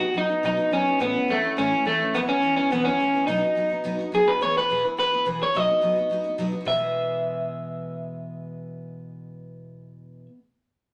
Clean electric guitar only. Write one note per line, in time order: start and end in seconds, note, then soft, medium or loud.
0.00 0.17 F#4 loud
0.18 0.44 D#4 loud
0.46 0.71 D#4 loud
0.73 0.99 C#4 loud
1.01 1.30 B3 loud
1.30 1.56 A3 loud
1.58 1.84 C#4 loud
1.87 2.15 A3 loud
2.15 2.20 B3 loud
2.29 2.55 C#4 loud
2.57 2.71 C#4 loud
2.72 2.84 B3 loud
2.85 3.26 C#4 loud
3.27 4.08 D#4 medium
4.15 4.28 G#4 medium
4.28 4.42 B4 medium
4.42 4.56 C#5 loud
4.58 4.83 B4 medium
4.99 5.25 B4 loud
5.43 5.57 C#5 medium
5.57 6.41 D#5 medium
6.68 10.26 E5 medium